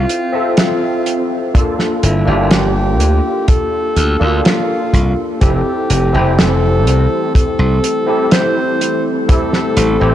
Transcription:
Already playing: C4 F4 C5 E5
0.09 closed hi-hat
0.32 C4 F4 A4 E5
0.57 F4, snare, closed hi-hat
1.06 closed hi-hat
1.54 A#3 D4 F4 A4, kick, closed hi-hat
1.79 snare
2.03 G1 E4, closed hi-hat
2.25 G1 A#3 D4 F4 G4
2.51 G4, snare, closed hi-hat
3.00 D2, closed hi-hat
3.48 A4, kick, closed hi-hat
3.96 D2, closed hi-hat
4.19 D2 A#3 D4 F4 A4
4.45 F4, snare, closed hi-hat
4.94 C2, kick, closed hi-hat
5.41 F1 E3 G3 A3 C4 E4 G4 A4, kick, closed hi-hat
5.90 F1, closed hi-hat
6.13 F1 C4 E4 G4 C5
6.39 A4, snare, closed hi-hat
6.87 C2, closed hi-hat
7.35 E4 A4, muted slap bass stroke, kick, closed hi-hat
7.59 C2
7.84 closed hi-hat
8.06 C4 E4 G4 A4
8.31 C5, snare, closed hi-hat
8.81 closed hi-hat
9.28 C3 C4 E4 G4 A4, kick, closed hi-hat
9.53 snare
9.77 A1, closed hi-hat
10.00 A1 C4 E4 G4 C5

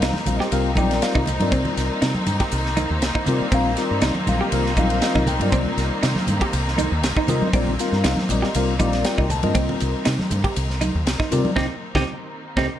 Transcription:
Already playing: D#3 G3 A#3 C4 D#4 F4 A#4 F5
0.01 C2 D#4, snare, hi-hat pedal, ride
0.13 snare, high conga
0.26 A#1 G3 C4 F4 A#4 C5 F5, hi-hat pedal, ride, low conga
0.36 G4 D#5
0.41 snare
0.52 C2 G3 C4 F4 A#4 F5 G5, hi-hat pedal, ride
0.75 A#1 G3 C4 D#4 F4 A#4 D5 G5, kick, hi-hat pedal, ride, high conga
0.91 snare, ride
1.02 F5, snare, hi-hat pedal, ride
1.15 C2 D#4, kick
1.26 D#5, hi-hat pedal, ride, low conga
1.40 G2 G3 C4 F4 A#4 D5, ride, high conga
1.52 C2 C4, kick, hi-hat pedal, ride
1.65 low conga
1.77 C2, snare, hi-hat pedal, ride
2.02 C3 D#4, snare, hi-hat pedal, ride
2.15 muted fingered electric bass stroke, high conga
2.26 G2, hi-hat pedal, ride, low conga
2.40 G4, kick, snare, ride
2.52 C2, hi-hat pedal, ride
2.66 snare
2.77 D#4, hi-hat pedal, ride, high conga
2.90 D#2
3.02 C2, snare, hi-hat pedal, ride
3.15 D#4, kick
3.26 C3 G3 C4 F4 A#4 D5, hi-hat pedal, ride, low conga
3.41 muted fingered electric bass stroke
3.52 A#1 G3 C4 F4 A#4 F5, kick, hi-hat pedal, ride
3.77 G3 C4 F4 A#4 D5, snare, hi-hat pedal, ride
3.91 G2
4.02 C2 D#4, snare, hi-hat pedal, ride
4.15 high conga
4.27 A#1 G3 C4 F4 A#4 F5, hi-hat pedal, ride, high conga, low conga
4.41 G4, muted fingered electric bass stroke
4.52 C2 G3 C4 F4 A#4 F5, hi-hat pedal, ride
4.66 snare
4.77 A#1 G3 C4 D#4 F4 A#4 F5, kick, hi-hat pedal, ride, high conga
4.90 ride
5.02 D#5, snare, hi-hat pedal, ride
5.15 C2 D#4, kick, snare, high conga
5.27 G5, hi-hat pedal, ride, low conga
5.39 G2 G3 C4 F4 A#4 D5, ride, high conga
5.52 C2 C4, kick, hi-hat pedal, ride
5.65 low conga
5.77 C2, snare, hi-hat pedal, ride
6.03 C3 D#4, snare, hi-hat pedal, ride
6.15 muted fingered electric bass stroke, snare, high conga
6.27 G2, hi-hat pedal, ride, low conga
6.41 G4, kick, ride
6.53 C2, hi-hat pedal, ride
6.68 snare
6.78 D#4, hi-hat pedal, ride, high conga
6.92 D#2
7.03 C2, snare, hi-hat pedal, ride
7.17 D#4, kick
7.28 C3 G3 C4 F4 A#4 D#5, hi-hat pedal, ride, low conga
7.42 muted fingered electric bass stroke, high conga
7.53 A#1 G3 C4 F4 A#4 D5, kick, hi-hat pedal, ride
7.67 low conga
7.79 G3 C4 F4 A#4 F5, snare, hi-hat pedal, ride
7.92 G2, snare
8.04 C2 D#4, snare, hi-hat pedal, ride
8.17 snare, high conga
8.29 A#1 G3 C4 F4 A#4 D5 D#5, hi-hat pedal, ride, low conga
8.42 G4, muted fingered electric bass stroke, snare
8.55 C2 G3 C4 F4 A#4 D5 F5, hi-hat pedal, ride
8.79 A#1 G3 C4 D#4 F4 A#4 D5 F5, kick, hi-hat pedal, ride, high conga
8.93 snare, ride
9.04 G5, snare, hi-hat pedal, ride
9.18 C2 D#4, kick
9.30 A5, hi-hat pedal, ride, low conga
9.43 G2 G3 C4 F4 A#4 D#5, ride, high conga
9.55 C2 C4, kick, hi-hat pedal, ride
9.69 low conga
9.80 C2, hi-hat pedal, ride
10.05 C3 D#4, snare, hi-hat pedal, ride
10.19 muted fingered electric bass stroke, snare, high conga
10.30 G2, hi-hat pedal, ride, low conga
10.44 G4, kick, ride
10.56 C2, hi-hat pedal, ride
10.70 snare
10.81 D#4, hi-hat pedal, ride, high conga
10.95 D#2
11.07 C2, snare, hi-hat pedal, ride
11.20 D#4, muted fingered electric bass stroke, kick, snare
11.31 C3 G3 C4 F4 A#4 D5, hi-hat pedal, ride, low conga
11.45 muted fingered electric bass stroke, high conga
11.56 C2 C4 D#4 G4, kick, snare, low conga
11.95 C2 C4 D#4 G4, kick, snare, low conga
12.57 C2 C4 D#4 G4, kick, snare, low conga

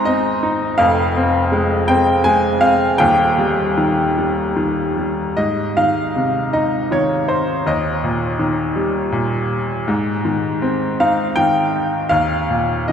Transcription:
Already playing: G#1 G#2 C4 D#4 G#5 A#5 C6
0.05 C4 D#5
0.43 D#4
0.78 F1 F2 F5
1.17 C4
1.52 G#3
1.88 C4 G5
2.24 G#3 G#5
2.61 C4 F5
2.98 D#1 D#2 G5
3.38 G3
3.77 D#3
4.18 G3
4.56 D#3
4.98 G3
5.37 G#2 D#5
5.77 D#3 F5
6.16 C3
6.53 D#4 D#5
6.91 D#3 C#5
7.28 C5
7.66 D#2 D#5
8.04 A#2
8.39 D#3
8.76 G3
9.12 A#2
9.88 G#2
10.25 D#3
10.62 C4
11.00 D#4 F5
11.36 D#3 G5
12.09 D#2 F5
12.50 A#2
12.88 D#3 D#5

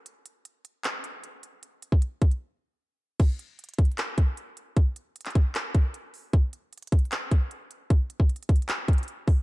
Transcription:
0.06 closed hi-hat
0.26 closed hi-hat
0.45 closed hi-hat
0.65 closed hi-hat
0.84 clap, closed hi-hat
1.04 closed hi-hat
1.24 closed hi-hat
1.43 closed hi-hat
1.63 closed hi-hat
1.82 closed hi-hat
1.92 kick
2.02 closed hi-hat
2.22 kick, closed hi-hat
2.31 closed hi-hat
3.20 kick, closed hi-hat, crash
3.39 closed hi-hat
3.59 closed hi-hat
3.64 closed hi-hat
3.69 closed hi-hat
3.74 closed hi-hat
3.78 kick, closed hi-hat
3.85 closed hi-hat
3.92 closed hi-hat
3.98 clap, closed hi-hat
4.18 kick, closed hi-hat
4.37 closed hi-hat
4.57 closed hi-hat
4.77 kick, closed hi-hat
4.96 closed hi-hat
5.16 closed hi-hat
5.21 closed hi-hat
5.26 clap, closed hi-hat
5.30 closed hi-hat
5.35 kick, closed hi-hat
5.55 clap, closed hi-hat
5.75 kick, closed hi-hat
5.94 closed hi-hat
6.14 open hi-hat
6.33 kick, closed hi-hat
6.53 closed hi-hat
6.73 closed hi-hat
6.78 closed hi-hat
6.82 closed hi-hat
6.87 closed hi-hat
6.92 kick, closed hi-hat
6.99 closed hi-hat
7.05 closed hi-hat
7.12 clap, closed hi-hat
7.31 kick, closed hi-hat
7.51 closed hi-hat
7.71 closed hi-hat
7.90 kick, closed hi-hat
8.10 closed hi-hat
8.20 kick
8.29 closed hi-hat
8.36 closed hi-hat
8.43 closed hi-hat
8.49 kick, closed hi-hat
8.56 closed hi-hat
8.62 closed hi-hat
8.69 clap, closed hi-hat
8.88 kick, closed hi-hat
8.93 closed hi-hat
8.98 closed hi-hat
9.03 closed hi-hat
9.08 closed hi-hat
9.28 kick, open hi-hat

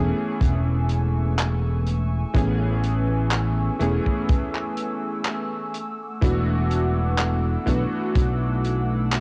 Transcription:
Already playing: E1 E3 A3 B3 C#4 G#4 G#5 C#6 E6
0.41 E1, kick, closed hi-hat
0.89 closed hi-hat
1.38 clap, closed hi-hat
1.87 closed hi-hat
2.34 A1 E3 A3 B3 C#4 G#4, kick, closed hi-hat
2.84 closed hi-hat
3.31 clap, closed hi-hat
3.79 E1 E3 A3 B3 C#4 G#4, closed hi-hat
4.06 kick
4.29 kick, closed hi-hat
4.55 clap
4.77 closed hi-hat
5.25 clap, closed hi-hat
5.74 F#5 D6, closed hi-hat
6.21 E1 E3 A3 B3 D4 F#4, kick, closed hi-hat
6.71 closed hi-hat
7.18 clap, closed hi-hat
7.66 B1 E3 A3 B3 D4 F#4, kick, closed hi-hat
8.16 B1, kick, closed hi-hat
8.65 closed hi-hat
9.12 clap, closed hi-hat

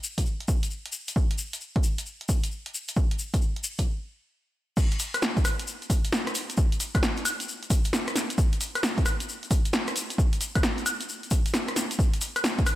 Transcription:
0.04 shaker
0.18 kick, closed hi-hat, shaker
0.26 shaker
0.40 closed hi-hat
0.48 kick, shaker
0.63 closed hi-hat, shaker
0.70 shaker
0.86 closed hi-hat
0.92 shaker
1.08 closed hi-hat, shaker
1.16 kick, shaker
1.31 closed hi-hat
1.38 shaker
1.53 closed hi-hat, shaker
1.61 shaker
1.76 kick, closed hi-hat
1.83 shaker
1.98 closed hi-hat, shaker
2.06 shaker
2.21 closed hi-hat
2.29 kick, shaker
2.44 closed hi-hat, shaker
2.51 shaker
2.66 closed hi-hat
2.74 shaker
2.88 closed hi-hat, shaker
2.96 kick, shaker
3.11 closed hi-hat
3.19 shaker
3.34 kick, closed hi-hat, shaker
3.42 shaker
3.56 closed hi-hat
3.64 shaker
3.78 kick, closed hi-hat, shaker
4.77 kick, crash, shaker
4.92 closed hi-hat, shaker
4.99 open hi-hat, shaker
5.14 cross-stick, closed hi-hat, high woodblock, shaker
5.22 snare, shaker
5.37 kick, closed hi-hat, shaker
5.45 cross-stick, open hi-hat, high woodblock, shaker
5.59 closed hi-hat, shaker
5.67 shaker
5.82 closed hi-hat, shaker
5.90 kick, open hi-hat, shaker
6.04 closed hi-hat, shaker
6.13 snare, shaker
6.27 cross-stick, closed hi-hat, shaker
6.35 open hi-hat, shaker
6.50 closed hi-hat, shaker
6.57 kick, shaker
6.72 closed hi-hat, shaker
6.80 open hi-hat, shaker
6.95 kick, cross-stick, closed hi-hat, high woodblock, shaker
7.03 snare, shaker
7.17 closed hi-hat, shaker
7.25 open hi-hat, high woodblock, shaker
7.40 closed hi-hat, shaker
7.48 shaker
7.63 closed hi-hat, shaker
7.70 kick, open hi-hat, shaker
7.85 closed hi-hat, shaker
7.93 snare, shaker
8.07 cross-stick, closed hi-hat, shaker
8.16 snare, open hi-hat, shaker
8.30 closed hi-hat, shaker
8.38 kick, shaker
8.53 closed hi-hat, shaker
8.61 open hi-hat, shaker
8.75 cross-stick, closed hi-hat, high woodblock, shaker
8.83 snare, shaker
8.98 kick, closed hi-hat, shaker
9.06 cross-stick, open hi-hat, high woodblock, shaker
9.20 closed hi-hat, shaker
9.29 shaker
9.43 closed hi-hat, shaker
9.51 kick, open hi-hat, shaker
9.65 closed hi-hat, shaker
9.73 snare, shaker
9.87 cross-stick, closed hi-hat, shaker
9.96 open hi-hat, shaker
10.10 closed hi-hat, shaker
10.18 kick, shaker
10.33 closed hi-hat, shaker
10.41 open hi-hat, shaker
10.55 kick, cross-stick, closed hi-hat, high woodblock, shaker
10.63 snare, shaker
10.78 closed hi-hat, shaker
10.86 open hi-hat, high woodblock, shaker
11.01 closed hi-hat, shaker
11.09 shaker
11.23 closed hi-hat, shaker
11.31 kick, open hi-hat, shaker
11.46 closed hi-hat, shaker
11.54 snare, shaker
11.68 cross-stick, closed hi-hat, shaker
11.76 snare, open hi-hat, shaker
11.91 closed hi-hat, shaker
11.99 kick, shaker
12.14 closed hi-hat, shaker
12.21 open hi-hat, shaker
12.36 cross-stick, closed hi-hat, high woodblock, shaker
12.44 snare, shaker
12.58 kick, closed hi-hat, shaker
12.66 cross-stick, open hi-hat, high woodblock, shaker

